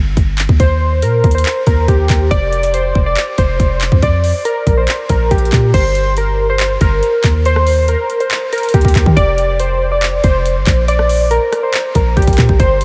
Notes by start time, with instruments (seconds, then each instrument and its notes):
Already playing: 808-style bass G1
0.17 808-style bass G1, kick, closed hi-hat
0.38 clap, closed hi-hat
0.49 808-style bass D#2, kick
0.60 synth keys C5, kick, closed hi-hat
1.02 808-style bass A#2, synth keys A#4, closed hi-hat
1.24 808-style bass D#2, kick, closed hi-hat
1.31 synth keys C5, closed hi-hat
1.38 closed hi-hat
1.45 clap, closed hi-hat
1.67 808-style bass D#2, synth keys A#4, kick, closed hi-hat
1.88 808-style bass D#2, synth keys G4, kick, closed hi-hat
2.10 808-style bass D#2, kick, clap, closed hi-hat
2.31 808-style bass F1, synth keys D5, kick, closed hi-hat
2.53 closed hi-hat
2.63 closed hi-hat
2.74 synth keys C5, closed hi-hat
2.95 808-style bass F1, kick
3.06 synth keys D5
3.16 clap, closed hi-hat
3.38 808-style bass F1, synth keys C5, kick, closed hi-hat
3.60 808-style bass F1, kick, closed hi-hat
3.81 clap, closed hi-hat
3.92 808-style bass F2, kick
4.02 synth keys D5, kick, closed hi-hat
4.24 open hi-hat
4.45 synth keys A#4, closed hi-hat
4.67 808-style bass A#1, kick, closed hi-hat
4.77 synth keys C5
4.88 clap, closed hi-hat
5.09 808-style bass A#1, synth keys A#4, kick, closed hi-hat
5.31 808-style bass A#1, synth keys G4, kick, closed hi-hat
5.38 closed hi-hat
5.45 closed hi-hat
5.52 808-style bass A#2, kick, clap, closed hi-hat
5.74 808-style bass G1, synth keys C5, kick, closed hi-hat, crash
5.95 closed hi-hat
6.17 synth keys A#4, closed hi-hat
6.50 synth keys C5
6.59 clap, closed hi-hat
6.81 808-style bass G1, synth keys A#4, kick, closed hi-hat
7.03 closed hi-hat
7.24 808-style bass D#2, kick, clap, closed hi-hat
7.45 synth keys C5, closed hi-hat
7.56 cross-stick
7.67 open hi-hat
7.88 synth keys A#4, closed hi-hat
8.10 closed hi-hat
8.20 synth keys C5, closed hi-hat
8.30 clap, closed hi-hat
8.53 synth keys A#4, closed hi-hat
8.58 closed hi-hat
8.63 closed hi-hat
8.69 closed hi-hat
8.74 808-style bass D#2, synth keys G4, kick, closed hi-hat
8.81 808-style bass D#2, kick, closed hi-hat
8.88 closed hi-hat
8.95 808-style bass D#2, kick, clap, closed hi-hat
9.06 808-style bass D#3, kick
9.16 808-style bass F1, synth keys D5, kick, closed hi-hat
9.38 closed hi-hat
9.60 synth keys C5, closed hi-hat
9.92 synth keys D5
10.02 clap, closed hi-hat
10.24 808-style bass F1, synth keys C5, kick, closed hi-hat
10.46 closed hi-hat
10.56 808-style bass G1
10.67 808-style bass A#1, kick, clap, closed hi-hat
10.88 synth keys D5, closed hi-hat
10.99 cross-stick
11.09 open hi-hat
11.31 synth keys A#4, closed hi-hat
11.53 cross-stick, closed hi-hat
11.63 synth keys C5
11.73 clap, closed hi-hat
11.95 808-style bass A#1, synth keys A#4, kick, closed hi-hat
12.17 808-style bass A#1, synth keys G4, kick, closed hi-hat
12.22 closed hi-hat
12.27 808-style bass A#1, kick, closed hi-hat
12.33 closed hi-hat
12.38 808-style bass A#2, kick, clap, closed hi-hat
12.49 808-style bass A#1, kick
12.60 808-style bass G1, synth keys C5, kick, closed hi-hat
12.81 closed hi-hat